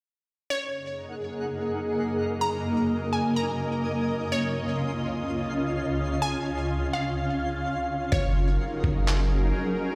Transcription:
0.50 ambient pad F#2 C#3 A#3 G#4 D#5, synth texture D#4 A#4 F#5, synth pluck C#5
2.41 ambient pad A#4, synth texture G#5, synth pluck A#5
3.13 synth pluck G#5
3.36 synth pluck A#5
4.31 ambient pad C#2 C#4 F4, synth texture C#4 F5 C6, synth pluck C#5
6.22 ambient pad F5, synth pluck G#5
6.93 synth pluck F5
8.12 808-style bass F#1, ambient pad F#3 C#4 D#4 G#4 A#4, synth texture A#3 F#4 D#5, synth pluck C#5, kick
8.84 808-style bass F#1, kick
9.08 clap

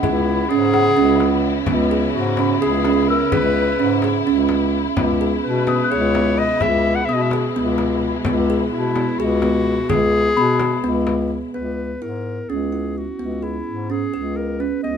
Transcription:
Already playing: string section C#3 B3 E4, celesta D#5
0.00 bass clarinet C#2, clarinet E4, kalimba G#4, celesta F#5, frame drum
0.49 bass clarinet G#2, kalimba C#4, clarinet G#4
0.73 kalimba G#4, celesta F#5, frame drum
0.97 bass clarinet C#2, kalimba C#4
1.20 frame drum
1.44 frame drum
1.66 bass clarinet C#2, kalimba B3, frame drum
1.91 kalimba G#4
2.14 bass clarinet G#2, clarinet F#4
2.37 kalimba C#4, celesta B5, frame drum
2.61 bass clarinet C#2, clarinet G#4, kalimba G#4
2.85 kalimba C#4, frame drum
3.08 clarinet A#4, celesta E6, frame drum
3.32 bass clarinet C#2, kalimba G#4, clarinet B4, frame drum
3.79 bass clarinet G#2, kalimba C#4
4.02 kalimba G#4, frame drum
4.26 bass clarinet C#2, kalimba C#4, frame drum
4.49 frame drum
4.97 bass clarinet C#2, string section B2 G#3, kalimba B3, frame drum
5.21 kalimba G#4
5.43 bass clarinet B2, clarinet B4
5.67 kalimba B3, celesta D#6, frame drum
5.84 celesta F#6
5.91 bass clarinet C#2, kalimba G#4, clarinet C#5
6.15 kalimba B3, frame drum
6.38 clarinet D#5, frame drum
6.60 bass clarinet C#2, kalimba G#4, clarinet E5, frame drum
6.95 clarinet F#5
7.05 bass clarinet B2, clarinet E5, celesta D#6
7.09 kalimba B3
7.14 clarinet D#5
7.22 clarinet E5
7.31 kalimba G#4, frame drum
7.56 bass clarinet C#2, kalimba B3
7.78 frame drum
8.02 frame drum
8.25 bass clarinet C#2, kalimba B3, frame drum
8.50 kalimba G#4
8.71 bass clarinet B2, clarinet E4
8.96 kalimba B3, frame drum
9.19 bass clarinet C#2, clarinet F#4, kalimba G#4
9.42 kalimba B3, frame drum
9.66 frame drum
9.89 bass clarinet C#2, clarinet G#4, kalimba G#4, frame drum
10.37 bass clarinet B2, kalimba B3, celesta B5
10.60 kalimba G#4, frame drum
10.84 bass clarinet C#2, kalimba B3
11.07 frame drum
11.30 frame drum
11.54 bass clarinet C#2, kalimba B3, clarinet B4
12.02 bass clarinet G#2, kalimba E4, clarinet A#4
12.48 bass clarinet C#2, kalimba C#4, clarinet G#4
12.72 kalimba E4
12.97 clarinet F#4
13.19 bass clarinet C#2, kalimba B3
13.42 clarinet E4, kalimba G#4
13.67 bass clarinet G#2
13.90 kalimba C#4, clarinet G#4
14.14 bass clarinet C#2, kalimba G#4
14.36 clarinet A#4
14.60 kalimba C#4, clarinet B4
14.83 bass clarinet C#2, kalimba B3, clarinet D#5

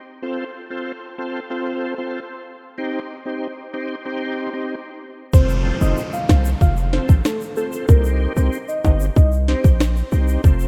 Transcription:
0.22 tonewheel organ C4 F4 A4 C5
0.70 tonewheel organ C4 F4 A4 C5
1.18 tonewheel organ C4 F4 A4 C5
1.50 tonewheel organ C4 F4 A4 C5
1.98 tonewheel organ C4 F4 A4 C5
2.78 tonewheel organ C4 D#4 G4 C5
3.26 tonewheel organ C4 D#4 G4 C5
3.73 tonewheel organ C4 D#4 G4 C5
4.05 tonewheel organ C4 D#4 G4 C5
4.53 tonewheel organ C4 D#4 G4 C5
5.33 808-style bass F1, tonewheel organ C4 F4 A4 C5, soft synth lead C5, kick, downlifter, shaker
5.49 shaker
5.81 808-style bass F1, tonewheel organ C4 F4 A4 C5, soft synth lead D#5, shaker
5.97 shaker
6.13 soft synth lead F5, shaker
6.29 808-style bass C2, tonewheel organ C4 F4 A4 C5, soft synth lead F5, kick, cross-stick, snare, shaker
6.45 shaker
6.61 808-style bass F1, soft synth lead F5, kick, shaker
6.77 shaker
6.93 tonewheel organ C4 F4 A4 C5, soft synth lead C5, snare
7.09 808-style bass A1, kick, shaker
7.25 soft synth lead A4, cross-stick, snare, shaker
7.41 shaker
7.56 tonewheel organ C4 F4 A4 C5, soft synth lead A4, shaker
7.72 shaker
7.88 808-style bass C2, tonewheel organ C4 D#4 G4 C5, soft synth lead A#4, kick, shaker
8.04 shaker
8.36 808-style bass C2, tonewheel organ C4 D#4 G4 C5, soft synth lead C5, shaker
8.53 shaker
8.68 soft synth lead D#5, shaker
8.84 808-style bass G1, tonewheel organ C4 D#4 G4 C5, soft synth lead D#5, kick, high timbale, shaker
9.00 shaker
9.16 808-style bass C2, soft synth lead D#5, kick, shaker
9.32 shaker
9.48 tonewheel organ C4 D#4 G4 C5, soft synth lead C5, snare
9.64 808-style bass A#1, kick, shaker
9.80 cross-stick, snare, shaker
9.96 shaker
10.12 808-style bass C2, tonewheel organ C4 D#4 G4 C5, shaker
10.28 shaker
10.44 808-style bass F1, tonewheel organ C4 F4 A4 C5, kick, shaker
10.60 shaker

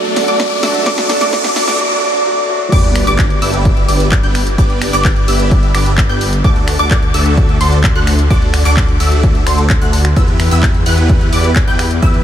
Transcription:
Already playing: felt piano F#3 A3 D4 F#4, supersaw synth A3 D4 F#4 A4 D5, synth pluck D6, riser
0.05 closed hi-hat
0.16 kalimba D5, snare, open hi-hat
0.28 supersaw synth A3 D4 F#4 A4 D5, kalimba D5, synth pluck D6, closed hi-hat
0.40 kick, snare, closed hi-hat
0.51 closed hi-hat
0.62 felt piano F#3 A3 D4 F#4, supersaw synth A3 D4 F#4 A4 E5, synth pluck E6, snare, open hi-hat
0.75 kalimba D5, closed hi-hat
0.85 felt piano F#3 A3 D4 F#4, supersaw synth A3 D4 F#4 A4 D5, synth pluck D6, kick, snare, closed hi-hat
0.98 snare, closed hi-hat
1.09 kalimba D5, snare, open hi-hat
1.21 supersaw synth A3 D4 F#4 A4 D5, kalimba D5, synth pluck D6, snare, closed hi-hat
1.32 felt piano F#3 A3 D4 F#4, supersaw synth A3 D4 F#4 A4 D5, synth pluck D6, kick, snare, closed hi-hat
1.44 snare, closed hi-hat
1.56 kalimba D5, snare, open hi-hat
1.68 supersaw synth A3 D4 F#4 A4 D5, kalimba D5, synth pluck D6, snare, closed hi-hat
1.78 felt piano F#3 A3 D4 F#4
2.01 felt piano F#3 A3 D4 F#4
2.25 felt piano F#3 A3 D4 F#4
2.48 felt piano F#3 A3 D4 F#4
2.72 detuned saw bass G1, supersaw synth B3 D4 G4 B4 D5, synth pluck D6, kick, closed hi-hat, crash, sub drop
2.84 closed hi-hat
2.96 finger snap, open hi-hat
3.07 detuned saw bass G1, supersaw synth B3 D4 G4 B4 D5, synth pluck D6, closed hi-hat
3.19 kick, clap, closed hi-hat
3.30 closed hi-hat
3.42 detuned saw bass G1, supersaw synth B3 D4 G4 B4 E5, synth pluck E6, open hi-hat
3.54 closed hi-hat
3.65 kick, closed hi-hat
3.77 closed hi-hat
3.88 detuned saw bass G1, supersaw synth B3 D4 G4 B4 D5, synth pluck D6, open hi-hat
4.00 closed hi-hat
4.12 kick, clap, closed hi-hat
4.23 detuned saw bass G1, supersaw synth B3 D4 G4 B4 G5, synth pluck G6, closed hi-hat
4.35 finger snap, open hi-hat
4.47 closed hi-hat
4.58 detuned saw bass G1, supersaw synth B3 D4 G4 B4 D5, synth pluck D6, kick, closed hi-hat
4.70 closed hi-hat
4.82 finger snap, open hi-hat
4.93 detuned saw bass G1, supersaw synth B3 D4 G4 B4 D5, synth pluck D6, clap, closed hi-hat
5.05 kick, clap, closed hi-hat
5.16 closed hi-hat
5.28 detuned saw bass G1, supersaw synth B3 D4 G4 B4 E5, synth pluck E6, open hi-hat
5.40 closed hi-hat
5.51 kick, closed hi-hat
5.63 closed hi-hat
5.75 detuned saw bass G1, supersaw synth B3 D4 G4 B4 D5, synth pluck D6, finger snap, open hi-hat
5.86 closed hi-hat
5.98 kick, clap, closed hi-hat
6.09 detuned saw bass G1, supersaw synth B3 D4 G4 B4 G5, synth pluck G6, closed hi-hat
6.21 open hi-hat
6.33 closed hi-hat
6.44 detuned saw bass D2, supersaw synth A3 D4 F#4 A4 D5, synth pluck D6, kick, closed hi-hat
6.56 closed hi-hat
6.68 finger snap, open hi-hat
6.79 detuned saw bass D2, supersaw synth A3 D4 F#4 A4 D5, synth pluck D6, closed hi-hat
6.91 kick, clap, closed hi-hat
7.03 closed hi-hat
7.14 detuned saw bass D2, supersaw synth A3 D4 F#4 A4 E5, synth pluck E6, open hi-hat
7.26 closed hi-hat
7.37 kick, closed hi-hat
7.49 closed hi-hat
7.61 detuned saw bass D2, supersaw synth A3 D4 F#4 A4 C5, synth pluck C6, open hi-hat
7.72 closed hi-hat
7.84 kick, clap, closed hi-hat
7.96 detuned saw bass D2, supersaw synth A3 D4 F#4 A4 F#5, synth pluck F#6, closed hi-hat
8.07 finger snap, open hi-hat
8.19 closed hi-hat
8.30 detuned saw bass D2, supersaw synth A3 D4 F#4 A4 D5, synth pluck D6, kick, closed hi-hat
8.42 closed hi-hat
8.54 finger snap, open hi-hat
8.65 detuned saw bass D2, supersaw synth A3 D4 F#4 A4 D5, synth pluck D6, clap, closed hi-hat
8.77 kick, clap, closed hi-hat
8.89 closed hi-hat
9.00 detuned saw bass D2, supersaw synth A3 D4 F#4 A4 E5, synth pluck E6, open hi-hat
9.12 closed hi-hat
9.23 kick, closed hi-hat
9.35 closed hi-hat
9.47 detuned saw bass D2, supersaw synth A3 D4 F#4 A4 C5, synth pluck C6, finger snap, open hi-hat
9.58 closed hi-hat
9.70 kick, clap, closed hi-hat
9.82 detuned saw bass D2, supersaw synth A3 D4 F#4 A4 F#5, synth pluck F#6, closed hi-hat
9.93 open hi-hat
10.05 finger snap, closed hi-hat
10.16 detuned saw bass E2, supersaw synth B3 E4 G4 B4 E5, synth pluck E6, kick, closed hi-hat
10.28 closed hi-hat
10.40 finger snap, open hi-hat
10.51 detuned saw bass E2, supersaw synth B3 E4 G4 B4 E5, synth pluck E6, closed hi-hat
10.63 kick, clap, closed hi-hat
10.75 closed hi-hat
10.86 detuned saw bass E2, supersaw synth B3 E4 G4 B4 F#5, synth pluck F#6, open hi-hat
10.98 closed hi-hat
11.09 kick, closed hi-hat
11.21 closed hi-hat
11.33 detuned saw bass E2, supersaw synth B3 E4 G4 B4 D5, synth pluck D6, open hi-hat
11.44 closed hi-hat
11.56 kick, clap, closed hi-hat
11.68 detuned saw bass E2, supersaw synth B3 E4 G4 B4 G5, synth pluck G6, closed hi-hat
11.79 finger snap, open hi-hat
11.91 closed hi-hat
12.02 detuned saw bass E2, supersaw synth B3 E4 G4 B4 E5, synth pluck E6, kick, closed hi-hat
12.14 closed hi-hat

